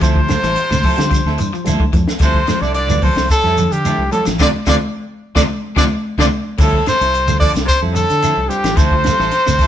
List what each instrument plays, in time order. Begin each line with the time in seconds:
0.00 fingered electric bass D2, baritone saxophone C3, clean electric guitar F3 C4 E4 A4, trumpet C5, kick, closed hi-hat, high conga, low conga, shekere
0.16 clean electric guitar F3, kick
0.28 reed electric piano G3 C4 F4 A4, muted clean electric guitar stroke, snare, closed hi-hat, high conga, claves, shekere
0.43 fingered electric bass A1, clean electric guitar E3 C4 E4 A4, snare, closed hi-hat, shekere
0.56 muted clean electric guitar stroke, closed hi-hat, high conga
0.70 fingered electric bass D2, clean electric guitar C3, muted clean electric guitar stroke, snare, high conga, claves, shekere
0.83 clean electric guitar F3 C4 E4 A4, kick, open hi-hat, low conga, shekere
0.97 fingered electric bass D3, reed electric piano G3 C4 F4 G4, muted clean electric guitar stroke, snare, closed hi-hat, shekere
1.11 clean electric guitar F3, kick, closed hi-hat, high conga, claves, shekere
1.25 fingered electric bass D2, clean electric guitar C4 E4 A4, snare
1.38 fingered electric bass G2, clean electric guitar E3, reed electric piano C5, muted clean electric guitar stroke, closed hi-hat, shekere
1.53 clean electric guitar F3, muted clean electric guitar stroke, shekere
1.64 fingered electric bass D2, clean electric guitar F3 C4 E4 A4, reed electric piano G3 C4 F4 A4 A5, closed hi-hat, high conga, claves, shekere
1.80 clean electric guitar D3, kick, high conga
1.93 fingered electric bass F2, clean electric guitar E3, muted clean electric guitar stroke, kick, closed hi-hat, high conga, low conga, shekere
2.08 muted clean electric guitar stroke, snare, claves, shekere
2.19 fingered electric bass D2, clean electric guitar D3 F3 C4 E4, reed electric piano G3 C4 F4 A4, trumpet C5, kick, closed hi-hat, high conga, shekere
2.23 baritone saxophone C3, clean electric guitar A4, trumpet C5
2.34 kick
2.47 clean electric guitar F3, muted clean electric guitar stroke, snare, closed hi-hat, high conga, claves, shekere
2.60 fingered electric bass C2, baritone saxophone D3, clean electric guitar C4 E4 A4, trumpet D5, shekere
2.74 baritone saxophone D3, trumpet D5, muted clean electric guitar stroke, closed hi-hat, high conga
2.88 fingered electric bass D2, clean electric guitar E3, reed electric piano G3 C4 F4 B4, muted clean electric guitar stroke, high conga, claves, shekere
3.01 baritone saxophone C3, clean electric guitar F3 C4 A4, trumpet C5, muted clean electric guitar stroke, kick, open hi-hat, high conga, low conga, shekere
3.16 fingered electric bass C2, clean electric guitar C3, muted clean electric guitar stroke, snare, shekere
3.29 baritone saxophone A2, trumpet A4, kick, closed hi-hat, claves, shekere
3.43 fingered electric bass F2, reed electric piano G3 C4 F4 A4, clean electric guitar C4 E4 A4, snare
3.57 clean electric guitar D3, closed hi-hat, low conga, shekere
3.69 baritone saxophone G2, fingered electric bass D3, trumpet G4, muted clean electric guitar stroke, closed hi-hat, shekere
3.85 clean electric guitar F3 C4 E4 A4, closed hi-hat, high conga, claves, shekere
3.98 fingered electric bass C2
4.11 baritone saxophone A2, reed electric piano G3 C4 F4 A4, trumpet A4, muted clean electric guitar stroke, muted fingered electric bass stroke, closed hi-hat, high conga, low conga, shekere
4.26 fingered electric bass A1, clean electric guitar F3, muted clean electric guitar stroke, snare, closed hi-hat, claves, shekere
4.39 fingered electric bass D2, clean electric guitar C3 D3 F3 C4 D4 F4, baritone saxophone D3, reed electric piano D4 F4 A4, trumpet D5, kick, snare, high conga, claves, shekere
4.45 trumpet D5
4.67 fingered electric bass D2, clean electric guitar C3 D3 F3 C4 D4 F4, baritone saxophone D3, reed electric piano D4 F4 A4, trumpet D5, kick, snare, high conga, claves, shekere
4.71 trumpet D5
5.35 fingered electric bass D2, clean electric guitar C3 D3 F3 C4 D4 F4, baritone saxophone D3, reed electric piano D4 F4 A4, trumpet D5, kick, snare, high conga, claves, shekere
5.76 fingered electric bass D2, clean electric guitar C3 D3 F3 C4 D4 F4, baritone saxophone D3, reed electric piano D4 F4 A4, trumpet D5, kick, snare, high conga, claves, shekere
6.18 fingered electric bass D2, clean electric guitar C3 D3 F3 C4 D4 F4, baritone saxophone D3, reed electric piano D4 F4 A4, trumpet D5, kick, snare, high conga, claves, shekere
6.58 fingered electric bass D2, baritone saxophone A2, clean electric guitar D3 F3 C4 E4 A4, reed electric piano G3 C4 F4, trumpet A4, kick, crash, shekere
6.62 reed electric piano A4, trumpet A4
6.73 kick
6.86 baritone saxophone C3, trumpet C5, muted fingered electric bass stroke, muted clean electric guitar stroke, snare, closed hi-hat, claves, shekere
7.00 fingered electric bass C2, clean electric guitar C4 E4 A4, closed hi-hat, shekere
7.14 muted clean electric guitar stroke, closed hi-hat
7.27 fingered electric bass D2, clean electric guitar E3, reed electric piano G3 C4 F4 A4, muted clean electric guitar stroke, claves, shekere
7.40 baritone saxophone D3, clean electric guitar F3 C4 A4, trumpet D5, muted clean electric guitar stroke, kick, open hi-hat, shekere
7.54 fingered electric bass C2, clean electric guitar C3, muted clean electric guitar stroke, snare, closed hi-hat, shekere
7.65 baritone saxophone C3, trumpet C5, kick, closed hi-hat
7.69 claves, shekere
7.82 fingered electric bass F2, reed electric piano G3 C4 F4 A4, clean electric guitar C4 E4 A4
7.91 baritone saxophone A2, clean electric guitar D3, trumpet A4
7.96 trumpet A4, muted clean electric guitar stroke, closed hi-hat, shekere
8.09 fingered electric bass D3, muted clean electric guitar stroke, closed hi-hat, shekere
8.22 clean electric guitar F3 C4 E4 A4, closed hi-hat, claves, shekere
8.37 fingered electric bass C2
8.46 baritone saxophone G2, reed electric piano G3 C4 C5, trumpet G4, muted clean electric guitar stroke
8.50 reed electric piano F4, closed hi-hat, shekere
8.64 fingered electric bass A1, clean electric guitar F3, muted clean electric guitar stroke, snare, closed hi-hat, claves, shekere
8.73 fingered electric bass D2, baritone saxophone C3, clean electric guitar E3 C4, trumpet C5, closed hi-hat
8.77 clean electric guitar F3 E4 A4, trumpet C5, kick, shekere
8.91 clean electric guitar F3, kick
9.04 reed electric piano G3 C4 F4 A4, muted clean electric guitar stroke, snare, closed hi-hat, claves, shekere
9.19 fingered electric bass A1, clean electric guitar E3 C4 E4 A4, snare, shekere
9.31 muted clean electric guitar stroke, snare, closed hi-hat
9.46 fingered electric bass D2, clean electric guitar C3, muted clean electric guitar stroke, snare, claves, shekere
9.58 clean electric guitar F3 C4 E4 A4, reed electric piano G5, kick, open hi-hat, shekere